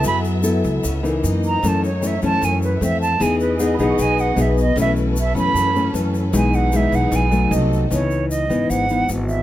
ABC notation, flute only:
X:1
M:4/4
L:1/8
Q:1/4=153
K:E
V:1 name="Flute"
b z6 ^a | a c e a g B e a | g B d f g f e d | e z e b3 z2 |
g f e f g2 z2 | c2 d2 f2 z e |]